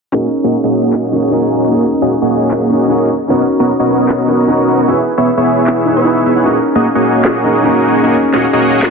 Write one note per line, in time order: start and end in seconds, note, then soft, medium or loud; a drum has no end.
0.12 0.26 A#3 medium
0.12 1.09 C#4 medium
0.12 1.10 D#4 medium
0.12 0.26 F#4 medium
0.12 0.26 G#4 medium
0.12 1.11 G#4 medium
0.12 1.11 A#4 medium
0.12 0.26 C#5 medium
0.12 0.26 D#5 medium
0.44 0.56 A#3 medium
0.44 0.56 F#4 medium
0.44 0.56 G#4 medium
0.44 0.56 C#5 medium
0.44 0.56 D#5 loud
0.64 1.70 A#3 medium
0.64 1.70 F#4 medium
0.64 1.70 G#4 medium
0.64 1.70 C#5 medium
0.64 1.70 D#5 loud
0.93 clap medium
1.12 1.30 C#4 medium
1.12 1.30 D#4 medium
1.12 1.30 G#4 medium
1.12 1.31 A#4 medium
1.31 1.42 C#4 medium
1.31 1.42 D#4 medium
1.31 1.42 G#4 medium
1.31 1.43 A#4 medium
1.70 1.84 A#3 medium
1.70 2.67 C#4 medium
1.70 2.68 D#4 medium
1.70 1.84 F#4 medium
1.70 1.84 G#4 medium
1.70 2.69 G#4 medium
1.70 1.84 C#5 medium
1.70 1.84 D#5 medium
1.74 2.69 A#4 medium
2.02 2.14 A#3 medium
2.02 2.14 F#4 medium
2.02 2.14 G#4 medium
2.02 2.14 C#5 medium
2.02 2.14 D#5 loud
2.22 3.09 A#3 medium
2.22 3.09 F#4 medium
2.22 3.09 G#4 medium
2.22 3.09 C#5 medium
2.22 3.09 D#5 loud
2.51 clap medium
2.70 2.88 C#4 medium
2.70 2.88 D#4 medium
2.70 2.88 G#4 medium
2.70 2.89 A#4 medium
2.89 3.00 C#4 medium
2.89 3.00 D#4 medium
2.89 3.00 G#4 medium
2.89 3.01 A#4 medium
3.28 3.42 B3 medium
3.28 4.25 C#4 medium
3.28 4.26 D#4 medium
3.28 3.42 F#4 medium
3.28 4.27 F#4 medium
3.28 3.42 A#4 medium
3.28 4.27 A#4 medium
3.28 3.42 C#5 medium
3.28 3.42 D#5 medium
3.60 3.72 B3 medium
3.60 3.72 F#4 medium
3.60 3.72 A#4 medium
3.60 3.72 C#5 medium
3.60 3.72 D#5 loud
3.79 4.85 B3 medium
3.79 4.85 F#4 medium
3.79 4.85 A#4 medium
3.79 4.85 C#5 medium
3.79 4.85 D#5 loud
4.09 clap medium
4.28 4.46 C#4 medium
4.28 4.46 D#4 medium
4.28 4.46 F#4 medium
4.28 4.46 A#4 medium
4.47 4.58 C#4 medium
4.47 4.58 D#4 medium
4.47 4.58 F#4 medium
4.47 4.59 A#4 loud
4.87 5.00 B3 medium
4.87 5.84 E4 medium
4.87 5.00 E4 medium
4.87 5.00 G#4 medium
4.87 5.84 G#4 medium
4.87 5.85 B4 medium
4.87 5.00 C#5 medium
4.87 5.00 E5 medium
5.18 5.30 B3 medium
5.18 5.29 E4 medium
5.18 5.30 G#4 medium
5.18 5.30 C#5 medium
5.18 5.29 E5 loud
5.37 5.95 B3 medium
5.37 5.95 E4 medium
5.37 5.95 G#4 medium
5.37 5.95 C#5 medium
5.37 5.95 E5 loud
5.67 clap medium
5.85 6.03 D#4 medium
5.85 6.04 E4 medium
5.85 6.04 G#4 medium
5.85 6.04 B4 medium
5.96 6.24 B3 loud
5.96 6.24 E4 medium
5.96 6.24 G#4 medium
5.96 6.24 C#5 medium
5.96 6.24 E5 loud
6.05 6.15 D#4 medium
6.05 6.16 E4 medium
6.05 6.16 G#4 medium
6.05 6.16 B4 loud
6.26 6.34 B3 loud
6.26 6.34 E4 medium
6.26 6.34 G#4 medium
6.26 6.34 C#5 medium
6.26 6.34 E5 loud
6.36 6.44 B3 medium
6.36 6.44 E4 medium
6.36 6.44 G#4 medium
6.36 6.44 C#5 medium
6.36 6.44 F#5 loud
6.44 6.58 A#3 medium
6.44 7.41 C#4 medium
6.44 7.42 D#4 medium
6.44 6.58 F#4 medium
6.44 6.58 G#4 medium
6.44 7.42 G#4 medium
6.44 6.58 C#5 medium
6.44 6.58 D#5 medium
6.48 7.43 A#4 medium
6.75 6.87 A#3 medium
6.75 6.87 F#4 medium
6.75 6.87 G#4 medium
6.75 6.87 C#5 medium
6.75 6.87 D#5 loud
6.95 8.01 A#3 medium
6.95 8.01 F#4 medium
6.95 8.01 G#4 medium
6.95 8.01 C#5 medium
6.95 8.01 D#5 loud
7.25 snare loud
7.25 clap medium
7.43 7.61 C#4 medium
7.43 7.62 D#4 medium
7.43 7.62 G#4 medium
7.43 7.62 A#4 medium
7.63 7.73 C#4 medium
7.63 7.74 D#4 medium
7.63 7.74 G#4 medium
7.63 7.74 A#4 loud
8.02 8.16 A#3 medium
8.02 8.90 C#4 medium
8.02 8.90 D#4 medium
8.02 8.16 F#4 medium
8.02 8.16 G#4 medium
8.02 8.90 G#4 medium
8.02 8.90 A#4 medium
8.02 8.16 C#5 medium
8.02 8.16 D#5 medium
8.33 8.45 A#3 medium
8.33 8.45 F#4 medium
8.33 8.45 G#4 medium
8.33 8.45 C#5 medium
8.33 8.45 D#5 loud
8.33 snare soft
8.53 8.90 A#3 medium
8.53 8.90 F#4 medium
8.53 8.90 G#4 medium
8.53 8.90 C#5 medium
8.53 8.90 D#5 medium
8.83 snare loud
8.83 clap medium